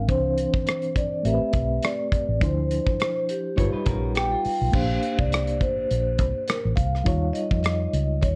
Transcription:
0.00 0.11 G#3 soft
0.00 0.09 C4 soft
0.00 0.10 D4 soft
0.00 0.11 A#4 soft
0.07 0.46 C2 loud
0.07 1.22 E3 medium
0.07 1.22 C4 medium
0.07 1.23 D4 medium
0.07 0.63 C5 loud
0.07 1.24 C5 medium
0.07 kick loud
0.07 closed hi-hat medium
0.38 closed hi-hat medium
0.54 kick medium
0.66 0.96 C5 medium
0.66 cross-stick loud
0.66 closed hi-hat medium
0.82 closed hi-hat medium
0.96 1.26 D5 medium
0.96 kick medium
0.96 closed hi-hat medium
1.23 1.38 A1 medium
1.23 2.38 A3 medium
1.23 2.39 C4 soft
1.23 2.39 G4 medium
1.23 1.85 E5 medium
1.23 closed hi-hat medium
1.27 1.33 A#4 soft
1.34 2.43 B4 medium
1.42 muted fingered electric bass stroke soft
1.53 1.78 B1 medium
1.53 kick medium
1.53 closed hi-hat medium
1.83 2.43 D5 medium
1.83 cross-stick loud
1.83 closed hi-hat medium
2.12 muted fingered electric bass stroke soft
2.12 kick medium
2.12 closed hi-hat medium
2.29 2.39 A1 medium
2.40 2.78 D2 medium
2.40 3.54 F3 medium
2.40 3.55 D4 medium
2.40 3.56 E4 soft
2.40 2.98 C5 medium
2.40 kick loud
2.40 closed hi-hat medium
2.44 3.56 C5 medium
2.71 closed hi-hat medium
2.86 kick medium
3.00 3.29 C5 medium
3.00 cross-stick loud
3.00 closed hi-hat medium
3.29 4.41 G4 medium
3.29 closed hi-hat medium
3.56 3.71 G1 medium
3.56 4.70 G3 medium
3.56 4.71 D#4 soft
3.56 3.72 F4 soft
3.56 4.72 F4 medium
3.56 4.72 B4 medium
3.56 3.72 C#5 medium
3.56 kick medium
3.56 closed hi-hat medium
3.72 3.86 D#4 soft
3.72 3.85 B4 medium
3.86 4.34 A#1 medium
3.86 4.14 C#4 medium
3.86 4.14 A#4 medium
3.86 kick medium
3.86 closed hi-hat medium
4.15 4.31 B3 medium
4.15 4.30 G4 medium
4.15 4.70 G5 medium
4.15 cross-stick loud
4.15 closed hi-hat medium
4.32 4.72 F4 medium
4.45 muted fingered electric bass stroke soft
4.45 open hi-hat medium
4.62 4.72 B1 medium
4.72 4.98 A#1 loud
4.72 7.01 A#3 medium
4.72 7.02 D4 medium
4.72 7.02 G4 medium
4.72 7.03 C5 medium
4.72 5.20 F5 medium
4.72 kick loud
4.72 crash medium
5.03 closed hi-hat medium
5.19 5.61 C2 medium
5.19 5.62 D5 medium
5.19 kick medium
5.32 cross-stick loud
5.32 closed hi-hat medium
5.47 closed hi-hat medium
5.61 5.85 A1 medium
5.61 6.51 C5 medium
5.61 kick medium
5.61 closed hi-hat medium
5.91 6.19 A#1 medium
5.91 closed hi-hat medium
6.18 6.32 C2 medium
6.18 kick medium
6.18 closed hi-hat medium
6.48 6.61 A#4 medium
6.48 cross-stick loud
6.48 closed hi-hat medium
6.65 6.76 A1 medium
6.76 7.01 C2 medium
6.76 7.36 F5 medium
6.76 kick medium
6.76 closed hi-hat medium
6.95 cross-stick soft
7.04 7.30 D#2 loud
7.04 8.36 G3 medium
7.04 8.36 D#4 medium
7.04 8.36 F4 medium
7.04 8.36 C#5 medium
7.04 kick loud
7.04 closed hi-hat medium
7.33 7.62 D#5 medium
7.33 closed hi-hat medium
7.51 7.86 F2 medium
7.51 kick medium
7.63 8.23 D#5 medium
7.63 cross-stick loud
7.63 closed hi-hat medium
7.93 8.23 C#2 medium
7.93 closed hi-hat medium
8.21 8.36 D#2 medium
8.21 8.36 C#5 medium
8.21 kick medium
8.21 closed hi-hat medium

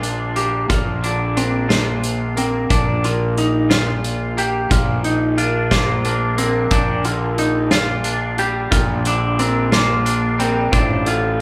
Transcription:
0.00 0.66 A#1 medium
0.00 0.69 A#2 medium
0.00 0.70 D3 soft
0.00 1.36 D4 soft
0.00 0.39 F4 medium
0.00 1.69 F4 medium
0.00 10.70 F4 soft
0.00 0.87 A#4 medium
0.00 10.70 A#4 soft
0.00 0.87 D5 medium
0.00 10.69 D5 soft
0.00 6.68 A#5 soft
0.00 closed hi-hat soft
0.36 2.36 A#3 soft
0.36 0.67 G4 medium
0.36 closed hi-hat soft
0.69 2.66 A#1 medium
0.69 2.70 A#2 medium
0.69 1.04 F4 medium
0.69 kick medium
0.69 closed hi-hat medium
1.03 2.70 D3 soft
1.03 1.38 D4 medium
1.03 closed hi-hat soft
1.37 1.68 C4 medium
1.37 4.87 D4 soft
1.37 1.70 A#4 soft
1.37 closed hi-hat medium
1.69 2.38 A#3 medium
1.69 3.69 F4 medium
1.69 2.37 C5 medium
1.69 snare medium
1.69 closed hi-hat medium
2.04 closed hi-hat medium
2.37 4.37 A#3 medium
2.37 2.72 C4 medium
2.37 3.05 A#4 medium
2.37 closed hi-hat soft
2.70 4.67 A#1 medium
2.70 4.70 A#2 medium
2.70 3.05 D4 medium
2.70 3.71 D5 medium
2.70 kick medium
2.70 closed hi-hat medium
3.04 3.38 F4 medium
3.04 4.88 A#4 medium
3.04 closed hi-hat soft
3.37 3.72 D#4 medium
3.37 closed hi-hat soft
3.70 5.71 F4 medium
3.70 4.34 F4 medium
3.70 4.88 D5 medium
3.70 snare medium
3.70 closed hi-hat medium
4.04 closed hi-hat soft
4.37 6.38 A#3 medium
4.37 4.72 G4 medium
4.37 closed hi-hat soft
4.70 6.67 A#1 medium
4.70 6.71 A#2 medium
4.70 5.04 F4 medium
4.70 kick medium
4.70 closed hi-hat medium
5.04 5.39 D#4 medium
5.04 closed hi-hat soft
5.38 6.05 D4 medium
5.38 5.72 F4 medium
5.38 5.72 A#4 soft
5.38 closed hi-hat soft
5.71 6.05 A#3 medium
5.71 7.71 F4 medium
5.71 6.38 C5 medium
5.71 kick medium
5.71 snare medium
5.71 closed hi-hat medium
6.05 6.38 A#3 medium
6.05 8.05 D4 soft
6.05 closed hi-hat medium
6.38 8.39 A#3 soft
6.38 6.72 C4 medium
6.38 7.05 A#4 medium
6.38 closed hi-hat soft
6.71 8.68 A#1 medium
6.71 8.39 A#2 medium
6.71 7.06 D4 medium
6.71 7.72 D5 medium
6.71 10.69 G5 soft
6.71 kick medium
6.71 closed hi-hat medium
7.05 8.72 D3 soft
7.05 7.38 F4 medium
7.05 8.89 A#4 medium
7.05 closed hi-hat soft
7.38 7.70 D#4 medium
7.38 closed hi-hat soft
7.71 9.72 F4 medium
7.71 8.38 F4 medium
7.71 8.89 D5 medium
7.71 snare medium
7.71 closed hi-hat medium
8.04 9.39 D4 soft
8.04 closed hi-hat soft
8.38 10.06 G3 medium
8.38 8.73 G4 medium
8.38 closed hi-hat soft
8.71 10.69 A#1 medium
8.71 10.39 A#2 medium
8.71 9.06 F4 medium
8.71 kick medium
8.71 closed hi-hat medium
9.05 10.73 D3 soft
9.05 9.41 D4 medium
9.05 closed hi-hat soft
9.39 9.73 C4 medium
9.39 10.05 D4 medium
9.39 9.73 A#4 medium
9.39 closed hi-hat soft
9.72 10.42 A#3 medium
9.72 11.41 F4 medium
9.72 10.39 C5 medium
9.72 snare medium
9.72 closed hi-hat medium
10.06 11.40 D4 medium
10.06 closed hi-hat soft
10.39 10.73 G3 medium
10.39 10.74 C4 medium
10.39 10.72 A#4 medium
10.39 closed hi-hat soft
10.71 11.41 A1 medium
10.71 11.41 A2 medium
10.71 11.08 D4 medium
10.71 11.41 F4 medium
10.71 11.41 C5 soft
10.71 11.41 C5 medium
10.71 11.41 D5 medium
10.71 11.41 A5 medium
10.71 kick medium
10.71 closed hi-hat medium
11.06 11.41 D3 medium
11.06 11.41 F4 medium
11.06 11.41 A4 medium
11.06 closed hi-hat soft

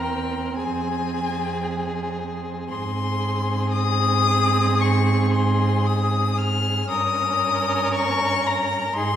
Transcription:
0.00 0.59 E2 medium
0.00 2.64 C4 medium
0.00 0.54 A#4 medium
0.00 0.55 G5 medium
0.57 2.70 F2 medium
0.57 2.64 G#4 medium
0.57 2.12 G#5 medium
2.68 6.88 G#2 medium
2.68 6.85 C4 medium
2.68 6.85 G#4 medium
2.68 3.70 C6 loud
3.72 4.83 D#6 loud
4.81 5.33 C#6 loud
5.34 5.88 C6 medium
5.86 6.39 D#6 loud
6.38 6.89 F6 loud
6.87 8.91 G2 medium
6.87 8.90 C#4 medium
6.87 8.92 A#4 medium
6.87 7.91 D#6 loud
7.94 8.48 C#6 loud
8.47 8.95 A#5 loud
8.93 9.16 G#2 medium
8.93 9.16 D#4 medium
8.93 9.16 G#4 medium
8.93 9.16 C6 loud

